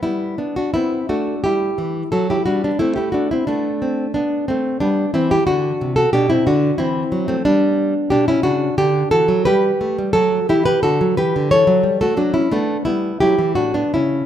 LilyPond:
\new Staff \with { instrumentName = "Nylon-string guitar" } { \time 3/4 \key g \major \tempo 4 = 89 << { <b e'>8 <b d'>16 <d' fis'>16 <c' e'>8 <d' fis'>8 <e' g'>4 | <fis' a'>16 <e' g'>16 <d' fis'>16 <b d'>16 <c' e'>16 <e' g'>16 <d' fis'>16 <c' e'>16 <a d'>4 | <b d'>8 <a c'>8 <b d'>8 <c' e'>16 <e' g'>16 <d' fis'>8. <fis' a'>16 | <d' g'>16 <c' e'>16 <d' fis'>8 <c' e'>8. <a c'>16 <b d'>4 |
\key d \major <d' g'>16 <cis' e'>16 <d' fis'>8 <d' g'>8 <fis' a'>8 <g' b'>4 | <fis' a'>8 <e' g'>16 <g' b'>16 <fis' a'>8 <g' b'>8 <a' cis''>8. <fis' a'>16 | <d' fis'>16 <cis' e'>16 <b d'>8 <b e'>8 <e' g'>8 <d' fis'>16 <b d'>16 <cis' e'>8 | } \\ { g4 b8 a8 g8 e8 | fis8 g8 a4 b8 c'8 | r4 g8 e8 d8 c8 | b,8 d8 e8 fis8 g4 |
b,8 cis8 d8 e16 fis16 g8 a16 g16 | fis8 e8 d16 fis16 e16 d16 e16 fis16 g16 a16 | fis8 a8 g8 fis16 e16 a,8 cis8 | } >> }